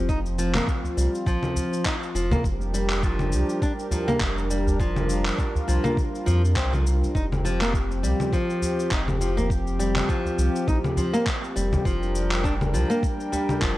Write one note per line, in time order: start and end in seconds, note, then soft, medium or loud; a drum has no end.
0.00 0.60 F1 medium
0.00 2.41 F3 medium
0.00 2.40 C4 medium
0.09 0.18 D#4 medium
0.09 2.42 F4 medium
0.09 kick medium
0.09 cabasa soft
0.26 cabasa soft
0.38 0.54 F3 medium
0.38 cabasa medium
0.55 0.67 A#3 medium
0.55 clap medium
0.55 low conga medium
0.55 cabasa soft
0.68 kick loud
0.68 cabasa soft
0.84 udu medium
0.84 cabasa soft
0.97 1.08 C2 medium
0.97 1.25 G3 medium
0.97 cabasa medium
1.15 cabasa soft
1.26 1.37 A#1 medium
1.26 1.84 F3 medium
1.26 kick loud
1.26 cabasa soft
1.43 low conga medium
1.43 cabasa soft
1.56 udu medium
1.56 cabasa medium
1.73 cabasa soft
1.85 1.95 D#4 medium
1.85 kick medium
1.85 clap medium
1.85 cabasa soft
2.03 cabasa soft
2.15 2.35 F1 medium
2.15 2.31 F3 medium
2.15 cabasa medium
2.31 2.44 A#3 medium
2.31 udu loud
2.31 low conga medium
2.31 cabasa soft
2.44 3.34 F1 medium
2.44 7.11 G3 medium
2.44 7.11 D4 medium
2.44 4.77 G4 medium
2.44 7.11 A#4 medium
2.44 kick loud
2.44 cabasa soft
2.61 cabasa soft
2.74 3.02 G3 medium
2.74 cabasa medium
2.90 clap medium
2.90 cabasa soft
3.03 3.61 F3 medium
3.03 kick loud
3.03 cabasa soft
3.19 low conga medium
3.19 cabasa soft
3.32 3.43 C2 medium
3.32 cabasa medium
3.49 cabasa soft
3.62 3.72 D4 medium
3.62 kick loud
3.62 cabasa soft
3.79 cabasa soft
3.91 4.07 F3 medium
3.91 udu medium
3.91 cabasa medium
4.08 4.20 A#3 medium
4.08 low conga medium
4.08 cabasa soft
4.21 5.31 F1 medium
4.21 kick loud
4.21 clap medium
4.21 cabasa soft
4.38 cabasa soft
4.50 4.78 G3 medium
4.50 cabasa medium
4.67 udu medium
4.67 cabasa soft
4.80 5.37 F3 medium
4.80 7.13 F4 medium
4.80 kick medium
4.80 cabasa soft
4.96 low conga medium
4.96 cabasa soft
5.09 cabasa medium
5.25 clap medium
5.25 cabasa soft
5.38 5.48 D4 medium
5.38 kick loud
5.38 cabasa soft
5.55 udu medium
5.55 cabasa soft
5.68 5.79 C2 medium
5.68 5.83 F3 medium
5.68 cabasa medium
5.84 5.96 A#3 medium
5.84 low conga medium
5.84 cabasa soft
5.97 kick loud
5.97 cabasa soft
6.15 cabasa soft
6.26 6.58 F2 medium
6.26 6.41 F3 medium
6.26 udu medium
6.26 cabasa medium
6.45 cabasa soft
6.56 7.07 C2 medium
6.56 6.72 C4 medium
6.56 kick loud
6.56 clap medium
6.56 cabasa soft
6.73 6.85 F3 medium
6.73 low conga medium
6.73 cabasa soft
6.87 cabasa medium
7.03 udu medium
7.03 cabasa soft
7.15 8.05 F1 loud
7.15 11.82 F3 medium
7.15 11.82 C4 medium
7.15 7.24 D#4 medium
7.15 11.82 G4 medium
7.15 kick loud
7.15 cabasa soft
7.32 low conga medium
7.32 cabasa soft
7.45 7.60 F3 medium
7.45 cabasa medium
7.61 7.73 A#3 loud
7.61 clap medium
7.61 cabasa soft
7.74 kick loud
7.74 cabasa soft
7.91 cabasa soft
8.03 8.14 C2 medium
8.03 8.31 G3 medium
8.03 cabasa medium
8.20 low conga medium
8.20 cabasa soft
8.33 8.90 F3 medium
8.33 kick loud
8.33 cabasa soft
8.50 cabasa soft
8.62 udu medium
8.62 cabasa medium
8.80 cabasa soft
8.91 10.02 F1 medium
8.91 9.01 D#4 medium
8.91 kick medium
8.91 clap medium
8.91 cabasa soft
9.08 low conga medium
9.08 cabasa soft
9.21 9.37 F3 medium
9.21 cabasa medium
9.37 9.50 A#3 medium
9.37 udu medium
9.37 cabasa soft
9.50 kick medium
9.50 cabasa soft
9.67 cabasa soft
9.79 10.08 G3 medium
9.79 cabasa medium
9.96 clap medium
9.96 low conga medium
9.96 cabasa soft
10.09 10.67 F3 medium
10.09 kick medium
10.09 cabasa soft
10.25 udu medium
10.25 cabasa soft
10.38 10.49 C2 medium
10.38 cabasa medium
10.56 cabasa soft
10.68 10.78 A#1 loud
10.68 10.77 D#4 medium
10.68 kick loud
10.68 cabasa soft
10.84 low conga medium
10.84 cabasa soft
10.97 11.13 F3 medium
10.97 udu medium
10.97 cabasa medium
11.14 11.26 A#3 loud
11.14 cabasa soft
11.26 kick loud
11.26 clap medium
11.26 cabasa soft
11.44 cabasa soft
11.56 11.76 F1 medium
11.56 11.84 G3 medium
11.56 cabasa medium
11.72 udu medium
11.72 low conga medium
11.72 cabasa soft
11.85 12.75 F1 loud
11.85 12.43 F3 medium
11.85 13.78 G3 medium
11.85 13.78 D4 medium
11.85 13.78 A#4 medium
11.85 13.78 G5 medium
11.85 kick medium
11.85 cabasa soft
12.03 cabasa soft
12.15 cabasa medium
12.31 clap medium
12.31 cabasa soft
12.44 12.54 D4 medium
12.44 kick loud
12.44 cabasa soft
12.61 low conga medium
12.61 cabasa soft
12.74 12.84 C2 medium
12.74 12.89 F3 medium
12.74 cabasa medium
12.90 13.02 A#3 loud
12.90 cabasa soft
13.03 kick medium
13.03 cabasa soft
13.20 cabasa soft
13.32 13.61 G3 medium
13.32 udu medium
13.32 cabasa medium
13.49 low conga medium
13.49 cabasa soft
13.61 13.78 F1 medium
13.61 13.78 F3 medium
13.61 kick medium
13.61 clap medium
13.61 cabasa soft